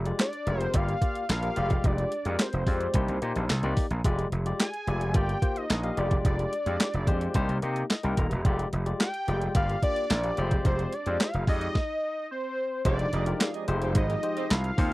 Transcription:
Already playing: F1
0.05 G#3 F4 G4 D5, closed hi-hat
0.19 D5, snare, clap, closed hi-hat
0.33 closed hi-hat
0.46 F1 G#3 F4 G4 A#4, closed hi-hat
0.60 C5, closed hi-hat
0.74 G1 A#3 F4 G4 D5 F5, kick, closed hi-hat
0.89 closed hi-hat
1.01 A#3 F4 G4 D5, kick, closed hi-hat
1.15 closed hi-hat
1.29 A#1 F5, snare, clap, closed hi-hat
1.42 A#3 F4 G4 A#4, closed hi-hat
1.56 F1 G#3 F4 G4 D5, closed hi-hat
1.70 kick, closed hi-hat
1.84 F1 D5, kick, closed hi-hat
1.98 closed hi-hat
2.12 closed hi-hat
2.25 F2 G#3 F4 G4 A#4, closed hi-hat
2.39 C5, snare, clap, closed hi-hat
2.53 F1, closed hi-hat
2.67 F2 G#3 F4 G4 D5, kick, open hi-hat
2.81 closed hi-hat
2.94 C2 A#3 D#4 G4 C5, kick, closed hi-hat
3.08 C2, closed hi-hat
3.22 A#2 A#3 D#4 G4 C5, closed hi-hat
3.36 A#1, closed hi-hat
3.49 C2, snare, clap, closed hi-hat
3.63 C2 A#3 D#4 G4 D5, closed hi-hat
3.77 kick, open hi-hat
3.91 A#1, closed hi-hat
4.04 F1 G#3 F4 G4 D5, kick, closed hi-hat
4.19 closed hi-hat
4.32 F1, closed hi-hat
4.46 G#3 F4 G4 D5, closed hi-hat
4.60 G#5, snare, clap, closed hi-hat
4.74 closed hi-hat
4.87 F1 G#3 F4 G4 D5, closed hi-hat
5.01 closed hi-hat
5.14 G1 A#3 F4 G4 D5 G5, kick, closed hi-hat
5.29 closed hi-hat
5.42 A#3 F4 G4 C5, kick, closed hi-hat
5.56 D#5, closed hi-hat
5.70 A#1, snare, clap, closed hi-hat
5.83 A#3 F4 G4 F5, closed hi-hat
5.97 F1 G#3 F4 G4 D5, closed hi-hat
6.11 kick, closed hi-hat
6.25 F1 D5, kick, closed hi-hat
6.39 closed hi-hat
6.53 closed hi-hat
6.66 F2 G#3 F4 G4 D5, closed hi-hat
6.80 snare, clap, closed hi-hat
6.94 F1, closed hi-hat
7.07 F2 G#3 F4 G4 C5, kick, closed hi-hat
7.21 closed hi-hat
7.34 C2 A#3 D#4 G4 C5, kick, closed hi-hat
7.49 C2, closed hi-hat
7.62 C3 A#3 D#4 G4 D#5, closed hi-hat
7.76 closed hi-hat
7.90 D#5, snare, clap, closed hi-hat
8.03 C2 A#3 D#4 G4 A#4 G5, closed hi-hat
8.17 D#1 A#5, kick, closed hi-hat
8.31 E1, closed hi-hat
8.45 F1 G#3 F4 G4 D5, kick, closed hi-hat
8.59 closed hi-hat
8.73 F1, closed hi-hat
8.86 G#3 F4 G4 D5, closed hi-hat
9.00 G5, snare, clap, closed hi-hat
9.14 closed hi-hat
9.27 F1 G#3 F4 G4 D5, closed hi-hat
9.42 closed hi-hat
9.55 G1 A#3 F4 G4 D5 F5, kick, closed hi-hat
9.69 closed hi-hat
9.82 A#3 F4 G4 D5, kick, closed hi-hat
9.96 closed hi-hat
10.10 A#1, snare, clap, closed hi-hat
10.24 A#3 F4 G4 D5, closed hi-hat
10.37 F1 G#3 F4 G4 C5 D5, closed hi-hat
10.51 kick, closed hi-hat
10.65 F1 C5, kick, closed hi-hat
10.79 closed hi-hat
10.93 D5, closed hi-hat
11.06 F2 G#3 F4 G4 C5, closed hi-hat
11.20 F5, snare, clap, closed hi-hat
11.34 F1, closed hi-hat
11.47 F2 G#3 F4 G4 D5 D#5, kick, open hi-hat
11.61 closed hi-hat
11.75 kick, snare
12.31 C5
12.85 F1 F3 G#3 C4 D#4 F4 G4 C5 D5, kick, closed hi-hat
12.99 closed hi-hat
13.13 F1 C4 D#4 G#4 D#5, closed hi-hat
13.26 G#3 D#4 F4 G4 A#4, closed hi-hat
13.40 C4 F4 G#4 F5, snare, clap, closed hi-hat
13.54 C4 D#4 G#4 D#5, closed hi-hat
13.68 F1 G#3 D#4 F4 G4 C5, closed hi-hat
13.81 G#3 C4 G4 C5, closed hi-hat
13.95 G#1 G#3 C4 G4 C5 D#5, kick, closed hi-hat
14.09 A#3 G4 A#4, closed hi-hat
14.23 G#3 D#4 F4 G4 C5, closed hi-hat
14.37 G#3 C4 G4 C5, closed hi-hat
14.51 C2 F5, snare, clap, closed hi-hat
14.64 closed hi-hat
14.77 D#2 C3 A#3 C4 D#4 G4 C5, kick, open hi-hat

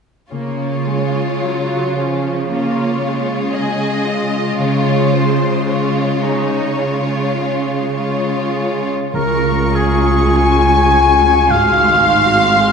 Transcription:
0.31 C#3 A#3 F4 C#5
0.87 G#3
1.43 F#3 F5
1.97 F3 G#4
2.48 A#3 C#4 F4 C#5
3.00 G#3
3.51 G#4 D#5 F5
4.04 F4 G#4
4.59 C#3 C#5
5.13 G#3 C5
5.67 F4 C#5 F5
6.23 D#4 G#4
6.80 C#4 F4
7.37 G#3
7.94 G#3 F4 C#5 F5
8.56 G#4
9.14 C#2 C#3 G#3 F4 A#4 C#6
9.55 C#4
9.75 G#4
9.96 G#4
10.36 F5 G#5
10.77 G#4
11.15 G#3
11.50 G#1 G#2 F#4 F5 C6
11.88 D#3
12.24 F#4
12.60 G#4

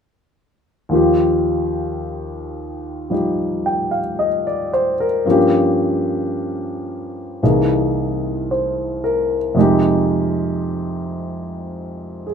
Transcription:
0.89 D#2 D#3 F3 F4
0.94 G4
3.10 F3 G3 D#4 G4
3.66 G5
3.91 F5
4.19 D#5
4.47 D5
4.73 C5
5.00 A#4
5.26 G2 F3 A#3 C#4
5.31 G4
7.43 C2 C3 E3 A#3 D#4 G#4
8.51 C5
9.04 A#4
9.55 F2 C3 G#3
9.59 D#4 G4
12.27 G#4

